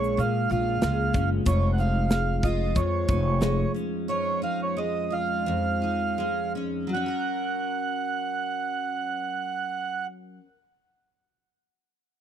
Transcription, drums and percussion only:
0.04 shaker medium
0.19 shaker medium
0.50 shaker soft
0.82 snare loud
0.82 shaker medium
1.14 kick loud
1.14 shaker soft
1.46 kick loud
1.46 shaker medium
1.79 shaker soft
2.10 snare loud
2.10 shaker medium
2.43 kick loud
2.43 shaker medium
2.76 kick loud
2.76 shaker medium
3.09 kick loud
3.09 shaker soft
3.42 snare loud
3.42 shaker medium
3.76 shaker soft

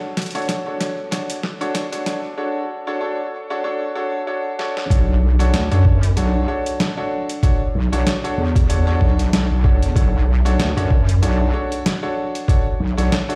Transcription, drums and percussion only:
0.17 snare medium
0.17 closed hi-hat medium
0.22 closed hi-hat medium
0.26 closed hi-hat soft
0.31 closed hi-hat soft
0.35 closed hi-hat soft
0.38 closed hi-hat soft
0.42 closed hi-hat soft
0.45 kick loud
0.45 snare medium
0.45 closed hi-hat soft
0.49 closed hi-hat medium
0.81 snare medium
0.81 closed hi-hat medium
1.11 kick medium
1.11 snare medium
1.11 closed hi-hat medium
1.30 closed hi-hat medium
1.43 snare medium
1.61 closed hi-hat soft
1.75 kick loud
1.75 snare medium
1.75 closed hi-hat medium
1.93 closed hi-hat medium
2.06 snare medium
2.06 closed hi-hat medium
4.59 snare medium
4.77 snare medium
4.90 kick loud
4.90 closed hi-hat medium
5.40 closed hi-hat medium
5.54 snare loud
5.54 closed hi-hat medium
5.72 cross-stick soft
5.72 closed hi-hat soft
5.85 kick loud
6.03 closed hi-hat medium
6.17 closed hi-hat medium
6.66 closed hi-hat medium
6.80 snare loud
6.80 closed hi-hat medium
7.29 closed hi-hat medium
7.43 kick loud
7.43 closed hi-hat medium
7.93 closed hi-hat medium
8.07 snare loud
8.07 closed hi-hat medium
8.25 closed hi-hat soft
8.56 kick loud
8.56 closed hi-hat medium
8.70 closed hi-hat medium
9.01 kick medium
9.19 closed hi-hat medium
9.33 snare loud
9.33 closed hi-hat medium
9.64 kick loud
9.83 closed hi-hat medium
9.96 kick loud
9.96 closed hi-hat medium
10.46 closed hi-hat medium
10.60 snare loud
10.60 closed hi-hat medium
10.78 cross-stick soft
10.78 closed hi-hat soft
10.91 kick loud
11.09 closed hi-hat medium
11.23 closed hi-hat medium
11.72 closed hi-hat medium
11.86 snare loud
11.86 closed hi-hat medium
12.35 closed hi-hat medium
12.48 kick loud
12.48 closed hi-hat medium
12.98 closed hi-hat medium
13.12 snare loud
13.12 closed hi-hat medium
13.30 closed hi-hat soft

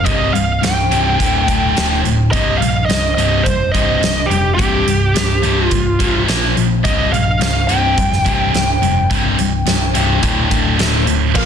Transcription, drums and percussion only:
0.06 kick loud
0.06 closed hi-hat medium
0.35 closed hi-hat medium
0.63 snare medium
0.63 closed hi-hat medium
0.92 closed hi-hat soft
1.20 kick medium
1.20 closed hi-hat medium
1.48 kick medium
1.48 closed hi-hat medium
1.77 snare loud
1.77 closed hi-hat medium
2.05 closed hi-hat medium
2.33 kick loud
2.33 closed hi-hat medium
2.62 closed hi-hat medium
2.90 snare loud
2.90 closed hi-hat medium
3.18 closed hi-hat medium
3.46 kick medium
3.46 closed hi-hat medium
3.75 kick medium
3.75 closed hi-hat medium
4.03 snare loud
4.03 closed hi-hat medium
4.31 closed hi-hat medium
4.59 kick loud
4.59 closed hi-hat medium
4.88 closed hi-hat medium
5.16 snare loud
5.16 closed hi-hat medium
5.43 closed hi-hat medium
5.71 kick medium
5.71 closed hi-hat medium
6.00 kick medium
6.00 closed hi-hat medium
6.28 snare loud
6.28 closed hi-hat medium
6.57 closed hi-hat medium
6.85 kick loud
6.85 closed hi-hat medium
7.14 closed hi-hat medium
7.41 snare loud
7.41 closed hi-hat medium
7.69 closed hi-hat medium
7.98 kick medium
7.98 closed hi-hat medium
8.13 snare soft
8.26 kick medium
8.26 closed hi-hat medium
8.54 snare loud
8.54 closed hi-hat medium
8.83 closed hi-hat medium
9.11 kick loud
9.11 closed hi-hat medium
9.39 closed hi-hat medium
9.67 snare loud
9.67 closed hi-hat medium
9.95 closed hi-hat medium
10.23 kick medium
10.23 closed hi-hat medium
10.51 kick medium
10.51 closed hi-hat medium
10.79 snare loud
10.79 closed hi-hat medium
11.07 closed hi-hat medium
11.35 kick loud
11.35 crash loud
11.35 crash medium

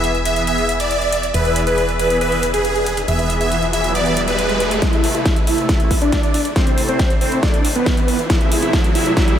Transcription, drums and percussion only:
0.04 closed hi-hat soft
0.15 closed hi-hat soft
0.25 closed hi-hat medium
0.36 closed hi-hat soft
0.47 closed hi-hat soft
0.58 closed hi-hat soft
0.69 closed hi-hat medium
0.80 closed hi-hat soft
0.91 closed hi-hat soft
1.02 closed hi-hat soft
1.13 closed hi-hat medium
1.23 closed hi-hat soft
1.34 closed hi-hat soft
1.45 closed hi-hat soft
1.56 closed hi-hat medium
1.67 closed hi-hat soft
1.78 closed hi-hat soft
1.89 closed hi-hat soft
1.99 closed hi-hat medium
2.10 closed hi-hat soft
2.21 closed hi-hat medium
2.32 closed hi-hat soft
2.43 closed hi-hat medium
2.54 closed hi-hat medium
2.65 closed hi-hat soft
2.76 closed hi-hat soft
2.86 closed hi-hat medium
2.97 closed hi-hat soft
3.08 closed hi-hat medium
3.19 closed hi-hat soft
3.30 closed hi-hat medium
3.41 closed hi-hat soft
3.52 closed hi-hat soft
3.62 closed hi-hat soft
3.73 closed hi-hat medium
3.84 closed hi-hat soft
3.95 closed hi-hat medium
4.06 closed hi-hat soft
4.17 closed hi-hat medium
4.28 closed hi-hat medium
4.39 closed hi-hat medium
4.49 closed hi-hat soft
4.60 closed hi-hat medium
4.71 closed hi-hat medium
4.82 kick loud
4.82 snare soft
4.82 closed hi-hat medium
4.93 closed hi-hat soft
5.04 open hi-hat loud
5.15 closed hi-hat medium
5.26 kick loud
5.26 snare soft
5.26 closed hi-hat medium
5.36 closed hi-hat medium
5.47 open hi-hat medium
5.58 closed hi-hat medium
5.69 kick loud
5.69 snare soft
5.69 closed hi-hat medium
5.80 closed hi-hat medium
5.91 kick medium
5.91 open hi-hat loud
6.02 closed hi-hat medium
6.12 kick loud
6.12 snare soft
6.12 closed hi-hat medium
6.23 closed hi-hat medium
6.34 open hi-hat medium
6.45 closed hi-hat medium
6.56 kick loud
6.56 snare medium
6.56 closed hi-hat medium
6.67 closed hi-hat soft
6.78 open hi-hat loud
6.89 closed hi-hat medium
6.99 kick loud
6.99 snare soft
6.99 closed hi-hat medium
7.10 closed hi-hat soft
7.21 open hi-hat medium
7.32 closed hi-hat medium
7.43 kick loud
7.43 snare medium
7.43 closed hi-hat medium
7.54 closed hi-hat soft
7.65 open hi-hat loud
7.76 closed hi-hat medium
7.86 kick loud
7.86 snare medium
7.86 closed hi-hat medium
7.97 closed hi-hat soft
8.08 open hi-hat medium
8.19 closed hi-hat medium
8.30 kick loud
8.30 snare medium
8.30 closed hi-hat medium
8.41 closed hi-hat soft
8.52 open hi-hat loud
8.62 closed hi-hat soft
8.73 kick loud
8.73 snare medium
8.73 closed hi-hat medium
8.84 closed hi-hat soft
8.95 open hi-hat loud
9.06 closed hi-hat soft
9.17 kick loud
9.17 snare medium
9.17 closed hi-hat medium
9.28 closed hi-hat soft

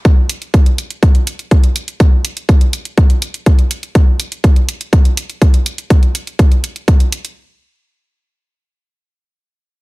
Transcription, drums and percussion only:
0.05 kick loud
0.05 closed hi-hat soft
0.29 closed hi-hat medium
0.42 closed hi-hat soft
0.54 kick loud
0.54 closed hi-hat soft
0.66 closed hi-hat soft
0.78 closed hi-hat medium
0.90 closed hi-hat soft
1.03 kick loud
1.03 closed hi-hat soft
1.15 closed hi-hat soft
1.27 closed hi-hat medium
1.39 closed hi-hat soft
1.51 kick loud
1.51 closed hi-hat soft
1.64 closed hi-hat soft
1.76 closed hi-hat medium
1.88 closed hi-hat soft
2.00 kick loud
2.00 closed hi-hat soft
2.25 closed hi-hat medium
2.37 closed hi-hat soft
2.49 kick loud
2.49 closed hi-hat soft
2.61 closed hi-hat soft
2.73 closed hi-hat medium
2.85 closed hi-hat soft
2.98 kick loud
2.98 closed hi-hat soft
3.10 closed hi-hat soft
3.22 closed hi-hat medium
3.34 closed hi-hat soft
3.46 kick loud
3.46 closed hi-hat soft
3.59 closed hi-hat soft
3.71 closed hi-hat medium
3.83 closed hi-hat soft
3.95 kick loud
3.95 closed hi-hat soft
4.20 closed hi-hat medium
4.32 closed hi-hat soft
4.44 kick loud
4.44 closed hi-hat soft
4.56 closed hi-hat soft
4.69 closed hi-hat medium
4.81 closed hi-hat soft
4.93 kick loud
4.93 closed hi-hat soft
5.05 closed hi-hat soft
5.17 closed hi-hat medium
5.30 closed hi-hat soft
5.42 kick loud
5.42 closed hi-hat soft
5.54 closed hi-hat soft
5.66 closed hi-hat medium
5.78 closed hi-hat soft
5.90 kick loud
5.90 closed hi-hat soft
6.03 closed hi-hat soft
6.15 closed hi-hat medium
6.27 closed hi-hat soft
6.39 kick loud
6.39 closed hi-hat soft
6.52 closed hi-hat soft
6.64 closed hi-hat medium
6.76 closed hi-hat soft
6.88 kick loud
6.88 closed hi-hat soft
7.00 closed hi-hat soft
7.12 closed hi-hat medium
7.25 closed hi-hat soft

